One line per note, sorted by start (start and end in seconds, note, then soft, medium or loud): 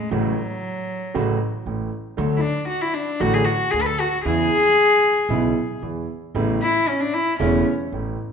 0.00 0.11 G#3 medium
0.09 0.33 A1 medium
0.09 0.33 A2 medium
0.09 0.33 C#3 medium
0.09 1.65 F#3 medium
0.09 0.33 F#3 medium
0.09 0.33 A3 medium
0.09 0.33 F#4 medium
1.14 1.36 A1 medium
1.14 1.37 A1 medium
1.14 1.37 A2 medium
1.14 1.36 C#3 medium
1.14 1.36 F#3 medium
1.14 1.36 A3 medium
1.14 1.36 F#4 medium
1.66 1.88 A1 medium
1.66 1.88 A2 medium
2.17 2.39 D2 medium
2.17 2.40 D2 medium
2.17 2.39 D3 medium
2.17 2.39 F#3 medium
2.17 2.39 A3 medium
2.17 2.40 F#4 medium
2.37 2.67 D4 medium
2.37 2.42 E4 medium
2.68 2.83 F#4 medium
2.81 2.96 E4 medium
2.94 3.22 D4 medium
3.20 3.43 A1 medium
3.20 3.43 A1 loud
3.20 3.43 A2 medium
3.20 3.43 D3 medium
3.20 3.43 F#3 medium
3.20 3.43 A3 medium
3.20 3.35 F#4 medium
3.20 3.43 F#4 medium
3.34 3.46 G#4 medium
3.45 3.72 F#4 medium
3.71 3.95 D2 medium
3.71 3.95 D3 medium
3.71 3.83 G#4 medium
3.82 3.88 B4 medium
3.86 4.01 A4 medium
4.00 4.24 F#4 medium
4.25 4.48 E2 medium
4.25 4.48 C#3 medium
4.25 4.48 E3 medium
4.25 4.48 G#3 medium
4.25 4.48 B3 medium
4.25 4.48 E4 medium
4.25 5.78 G#4 loud
5.29 5.52 B1 medium
5.29 5.52 B2 medium
5.29 5.52 C#3 medium
5.29 5.52 G#3 medium
5.29 5.52 B3 medium
5.29 5.52 E4 medium
5.82 6.05 E2 medium
5.82 6.05 E2 soft
5.82 6.05 E3 soft
6.35 6.57 A1 medium
6.35 6.58 A1 medium
6.35 6.58 A2 medium
6.35 6.58 C#3 medium
6.35 6.58 A3 medium
6.35 6.58 B3 medium
6.35 6.58 E4 medium
6.62 6.90 E4 medium
6.88 7.02 C#4 medium
7.01 7.15 D4 medium
7.14 7.39 E4 medium
7.40 7.62 E1 medium
7.40 7.62 E2 medium
7.40 7.62 C#3 medium
7.40 7.62 A3 medium
7.40 7.62 B3 medium
7.40 7.64 C#4 medium
7.40 7.62 E4 medium
7.92 8.14 A1 medium
7.92 8.15 A1 medium
7.92 8.15 A2 medium